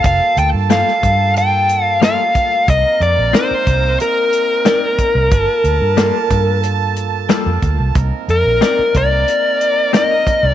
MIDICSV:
0, 0, Header, 1, 7, 480
1, 0, Start_track
1, 0, Key_signature, -2, "minor"
1, 0, Tempo, 659341
1, 32, Time_signature, 4, 2, 24, 8
1, 7675, End_track
2, 0, Start_track
2, 0, Title_t, "Lead electric guitar"
2, 0, Program_c, 0, 29
2, 41, Note_on_c, 0, 77, 95
2, 280, Note_off_c, 0, 77, 0
2, 283, Note_on_c, 0, 79, 91
2, 347, Note_off_c, 0, 79, 0
2, 524, Note_on_c, 0, 77, 81
2, 969, Note_off_c, 0, 77, 0
2, 1003, Note_on_c, 0, 79, 94
2, 1338, Note_off_c, 0, 79, 0
2, 1338, Note_on_c, 0, 77, 94
2, 1448, Note_off_c, 0, 77, 0
2, 1484, Note_on_c, 0, 77, 91
2, 1962, Note_off_c, 0, 77, 0
2, 1964, Note_on_c, 0, 75, 92
2, 2182, Note_off_c, 0, 75, 0
2, 2202, Note_on_c, 0, 74, 77
2, 2420, Note_off_c, 0, 74, 0
2, 2444, Note_on_c, 0, 72, 76
2, 2889, Note_off_c, 0, 72, 0
2, 2924, Note_on_c, 0, 70, 69
2, 4809, Note_off_c, 0, 70, 0
2, 6045, Note_on_c, 0, 70, 78
2, 6530, Note_off_c, 0, 70, 0
2, 6533, Note_on_c, 0, 74, 83
2, 7214, Note_off_c, 0, 74, 0
2, 7256, Note_on_c, 0, 75, 84
2, 7598, Note_off_c, 0, 75, 0
2, 7598, Note_on_c, 0, 74, 84
2, 7675, Note_off_c, 0, 74, 0
2, 7675, End_track
3, 0, Start_track
3, 0, Title_t, "Clean electric guitar"
3, 0, Program_c, 1, 27
3, 508, Note_on_c, 1, 55, 71
3, 512, Note_on_c, 1, 58, 78
3, 516, Note_on_c, 1, 65, 82
3, 517, Note_on_c, 1, 69, 81
3, 656, Note_off_c, 1, 55, 0
3, 658, Note_off_c, 1, 58, 0
3, 660, Note_off_c, 1, 65, 0
3, 661, Note_off_c, 1, 69, 0
3, 1467, Note_on_c, 1, 55, 74
3, 1471, Note_on_c, 1, 58, 84
3, 1475, Note_on_c, 1, 65, 83
3, 1478, Note_on_c, 1, 69, 91
3, 1616, Note_off_c, 1, 55, 0
3, 1618, Note_off_c, 1, 58, 0
3, 1620, Note_off_c, 1, 65, 0
3, 1621, Note_off_c, 1, 69, 0
3, 2427, Note_on_c, 1, 60, 71
3, 2431, Note_on_c, 1, 63, 76
3, 2434, Note_on_c, 1, 70, 78
3, 2437, Note_on_c, 1, 74, 89
3, 2576, Note_off_c, 1, 60, 0
3, 2578, Note_off_c, 1, 63, 0
3, 2579, Note_off_c, 1, 70, 0
3, 2581, Note_off_c, 1, 74, 0
3, 3387, Note_on_c, 1, 60, 77
3, 3392, Note_on_c, 1, 63, 70
3, 3395, Note_on_c, 1, 70, 75
3, 3396, Note_on_c, 1, 74, 77
3, 3535, Note_off_c, 1, 60, 0
3, 3538, Note_off_c, 1, 63, 0
3, 3540, Note_off_c, 1, 70, 0
3, 3540, Note_off_c, 1, 74, 0
3, 4347, Note_on_c, 1, 55, 76
3, 4351, Note_on_c, 1, 58, 79
3, 4355, Note_on_c, 1, 65, 83
3, 4357, Note_on_c, 1, 69, 82
3, 4496, Note_off_c, 1, 55, 0
3, 4498, Note_off_c, 1, 58, 0
3, 4500, Note_off_c, 1, 65, 0
3, 4501, Note_off_c, 1, 69, 0
3, 5308, Note_on_c, 1, 55, 89
3, 5311, Note_on_c, 1, 58, 83
3, 5314, Note_on_c, 1, 65, 85
3, 5318, Note_on_c, 1, 69, 91
3, 5456, Note_off_c, 1, 55, 0
3, 5458, Note_off_c, 1, 58, 0
3, 5460, Note_off_c, 1, 65, 0
3, 5461, Note_off_c, 1, 69, 0
3, 6269, Note_on_c, 1, 60, 78
3, 6273, Note_on_c, 1, 63, 70
3, 6277, Note_on_c, 1, 70, 80
3, 6279, Note_on_c, 1, 74, 87
3, 6417, Note_off_c, 1, 60, 0
3, 6419, Note_off_c, 1, 63, 0
3, 6421, Note_off_c, 1, 70, 0
3, 6422, Note_off_c, 1, 74, 0
3, 7230, Note_on_c, 1, 60, 74
3, 7234, Note_on_c, 1, 63, 87
3, 7237, Note_on_c, 1, 70, 82
3, 7240, Note_on_c, 1, 74, 88
3, 7378, Note_off_c, 1, 60, 0
3, 7380, Note_off_c, 1, 63, 0
3, 7381, Note_off_c, 1, 70, 0
3, 7383, Note_off_c, 1, 74, 0
3, 7675, End_track
4, 0, Start_track
4, 0, Title_t, "Horn section"
4, 0, Program_c, 2, 61
4, 0, Note_on_c, 2, 58, 70
4, 0, Note_on_c, 2, 65, 64
4, 0, Note_on_c, 2, 69, 71
4, 0, Note_on_c, 2, 81, 77
4, 1923, Note_off_c, 2, 58, 0
4, 1923, Note_off_c, 2, 69, 0
4, 1923, Note_off_c, 2, 81, 0
4, 1924, Note_off_c, 2, 65, 0
4, 1951, Note_on_c, 2, 60, 77
4, 1952, Note_on_c, 2, 58, 77
4, 1952, Note_on_c, 2, 70, 84
4, 1954, Note_on_c, 2, 63, 74
4, 3852, Note_off_c, 2, 60, 0
4, 3853, Note_off_c, 2, 58, 0
4, 3853, Note_off_c, 2, 70, 0
4, 3854, Note_off_c, 2, 63, 0
4, 3872, Note_on_c, 2, 58, 75
4, 3874, Note_on_c, 2, 69, 78
4, 3874, Note_on_c, 2, 81, 85
4, 3877, Note_on_c, 2, 65, 67
4, 5773, Note_off_c, 2, 58, 0
4, 5774, Note_off_c, 2, 69, 0
4, 5774, Note_off_c, 2, 81, 0
4, 5775, Note_off_c, 2, 65, 0
4, 5790, Note_on_c, 2, 58, 72
4, 5790, Note_on_c, 2, 70, 78
4, 5792, Note_on_c, 2, 60, 75
4, 5792, Note_on_c, 2, 63, 65
4, 7675, Note_off_c, 2, 58, 0
4, 7675, Note_off_c, 2, 60, 0
4, 7675, Note_off_c, 2, 63, 0
4, 7675, Note_off_c, 2, 70, 0
4, 7675, End_track
5, 0, Start_track
5, 0, Title_t, "Fingered electric bass"
5, 0, Program_c, 3, 33
5, 29, Note_on_c, 3, 29, 86
5, 136, Note_off_c, 3, 29, 0
5, 267, Note_on_c, 3, 38, 92
5, 375, Note_off_c, 3, 38, 0
5, 390, Note_on_c, 3, 43, 74
5, 598, Note_off_c, 3, 43, 0
5, 751, Note_on_c, 3, 43, 92
5, 1578, Note_off_c, 3, 43, 0
5, 1952, Note_on_c, 3, 36, 94
5, 2057, Note_off_c, 3, 36, 0
5, 2186, Note_on_c, 3, 41, 85
5, 2294, Note_off_c, 3, 41, 0
5, 2313, Note_on_c, 3, 34, 75
5, 2414, Note_off_c, 3, 34, 0
5, 2671, Note_on_c, 3, 36, 106
5, 2878, Note_off_c, 3, 36, 0
5, 3749, Note_on_c, 3, 36, 86
5, 3852, Note_off_c, 3, 36, 0
5, 3869, Note_on_c, 3, 31, 84
5, 3976, Note_off_c, 3, 31, 0
5, 4106, Note_on_c, 3, 38, 87
5, 4214, Note_off_c, 3, 38, 0
5, 4230, Note_on_c, 3, 43, 75
5, 4439, Note_off_c, 3, 43, 0
5, 4589, Note_on_c, 3, 43, 91
5, 5316, Note_off_c, 3, 43, 0
5, 5433, Note_on_c, 3, 41, 80
5, 5539, Note_off_c, 3, 41, 0
5, 5550, Note_on_c, 3, 38, 80
5, 5662, Note_off_c, 3, 38, 0
5, 5672, Note_on_c, 3, 36, 73
5, 5779, Note_off_c, 3, 36, 0
5, 5790, Note_on_c, 3, 36, 103
5, 5897, Note_off_c, 3, 36, 0
5, 6030, Note_on_c, 3, 41, 83
5, 6137, Note_off_c, 3, 41, 0
5, 6152, Note_on_c, 3, 34, 71
5, 6254, Note_off_c, 3, 34, 0
5, 6513, Note_on_c, 3, 36, 101
5, 6719, Note_off_c, 3, 36, 0
5, 7593, Note_on_c, 3, 36, 86
5, 7675, Note_off_c, 3, 36, 0
5, 7675, End_track
6, 0, Start_track
6, 0, Title_t, "Muted fingered electric bass strokes"
6, 2554, Note_on_c, 9, 29, 38
6, 2627, Note_off_c, 9, 29, 0
6, 6398, Note_on_c, 9, 29, 36
6, 6470, Note_off_c, 9, 29, 0
6, 7675, End_track
7, 0, Start_track
7, 0, Title_t, "Drums"
7, 29, Note_on_c, 9, 42, 81
7, 31, Note_on_c, 9, 36, 104
7, 102, Note_off_c, 9, 42, 0
7, 104, Note_off_c, 9, 36, 0
7, 270, Note_on_c, 9, 42, 58
7, 343, Note_off_c, 9, 42, 0
7, 511, Note_on_c, 9, 42, 84
7, 515, Note_on_c, 9, 38, 91
7, 583, Note_off_c, 9, 42, 0
7, 588, Note_off_c, 9, 38, 0
7, 639, Note_on_c, 9, 38, 31
7, 712, Note_off_c, 9, 38, 0
7, 751, Note_on_c, 9, 42, 63
7, 752, Note_on_c, 9, 36, 80
7, 824, Note_off_c, 9, 36, 0
7, 824, Note_off_c, 9, 42, 0
7, 993, Note_on_c, 9, 42, 70
7, 1065, Note_off_c, 9, 42, 0
7, 1231, Note_on_c, 9, 42, 60
7, 1304, Note_off_c, 9, 42, 0
7, 1472, Note_on_c, 9, 42, 79
7, 1477, Note_on_c, 9, 38, 112
7, 1545, Note_off_c, 9, 42, 0
7, 1549, Note_off_c, 9, 38, 0
7, 1712, Note_on_c, 9, 36, 77
7, 1712, Note_on_c, 9, 42, 55
7, 1784, Note_off_c, 9, 36, 0
7, 1785, Note_off_c, 9, 42, 0
7, 1952, Note_on_c, 9, 36, 100
7, 1952, Note_on_c, 9, 42, 72
7, 2025, Note_off_c, 9, 36, 0
7, 2025, Note_off_c, 9, 42, 0
7, 2194, Note_on_c, 9, 42, 54
7, 2267, Note_off_c, 9, 42, 0
7, 2433, Note_on_c, 9, 42, 77
7, 2437, Note_on_c, 9, 38, 106
7, 2506, Note_off_c, 9, 42, 0
7, 2510, Note_off_c, 9, 38, 0
7, 2670, Note_on_c, 9, 42, 59
7, 2671, Note_on_c, 9, 36, 79
7, 2743, Note_off_c, 9, 42, 0
7, 2744, Note_off_c, 9, 36, 0
7, 2910, Note_on_c, 9, 42, 72
7, 2983, Note_off_c, 9, 42, 0
7, 3150, Note_on_c, 9, 42, 67
7, 3223, Note_off_c, 9, 42, 0
7, 3388, Note_on_c, 9, 42, 85
7, 3393, Note_on_c, 9, 38, 108
7, 3461, Note_off_c, 9, 42, 0
7, 3466, Note_off_c, 9, 38, 0
7, 3629, Note_on_c, 9, 42, 66
7, 3630, Note_on_c, 9, 36, 78
7, 3701, Note_off_c, 9, 42, 0
7, 3703, Note_off_c, 9, 36, 0
7, 3868, Note_on_c, 9, 42, 80
7, 3870, Note_on_c, 9, 36, 106
7, 3941, Note_off_c, 9, 42, 0
7, 3943, Note_off_c, 9, 36, 0
7, 4108, Note_on_c, 9, 42, 62
7, 4181, Note_off_c, 9, 42, 0
7, 4349, Note_on_c, 9, 42, 81
7, 4353, Note_on_c, 9, 38, 107
7, 4421, Note_off_c, 9, 42, 0
7, 4426, Note_off_c, 9, 38, 0
7, 4589, Note_on_c, 9, 42, 68
7, 4590, Note_on_c, 9, 36, 85
7, 4662, Note_off_c, 9, 42, 0
7, 4663, Note_off_c, 9, 36, 0
7, 4829, Note_on_c, 9, 42, 69
7, 4902, Note_off_c, 9, 42, 0
7, 5069, Note_on_c, 9, 42, 57
7, 5142, Note_off_c, 9, 42, 0
7, 5308, Note_on_c, 9, 42, 77
7, 5313, Note_on_c, 9, 38, 98
7, 5381, Note_off_c, 9, 42, 0
7, 5386, Note_off_c, 9, 38, 0
7, 5550, Note_on_c, 9, 42, 57
7, 5551, Note_on_c, 9, 36, 78
7, 5622, Note_off_c, 9, 42, 0
7, 5624, Note_off_c, 9, 36, 0
7, 5788, Note_on_c, 9, 42, 71
7, 5791, Note_on_c, 9, 36, 100
7, 5861, Note_off_c, 9, 42, 0
7, 5864, Note_off_c, 9, 36, 0
7, 6032, Note_on_c, 9, 42, 50
7, 6105, Note_off_c, 9, 42, 0
7, 6274, Note_on_c, 9, 42, 78
7, 6278, Note_on_c, 9, 38, 98
7, 6346, Note_off_c, 9, 42, 0
7, 6351, Note_off_c, 9, 38, 0
7, 6514, Note_on_c, 9, 36, 83
7, 6515, Note_on_c, 9, 42, 60
7, 6586, Note_off_c, 9, 36, 0
7, 6588, Note_off_c, 9, 42, 0
7, 6755, Note_on_c, 9, 42, 73
7, 6828, Note_off_c, 9, 42, 0
7, 6994, Note_on_c, 9, 42, 58
7, 7067, Note_off_c, 9, 42, 0
7, 7235, Note_on_c, 9, 42, 85
7, 7239, Note_on_c, 9, 38, 105
7, 7307, Note_off_c, 9, 42, 0
7, 7312, Note_off_c, 9, 38, 0
7, 7474, Note_on_c, 9, 36, 81
7, 7477, Note_on_c, 9, 42, 65
7, 7547, Note_off_c, 9, 36, 0
7, 7550, Note_off_c, 9, 42, 0
7, 7675, End_track
0, 0, End_of_file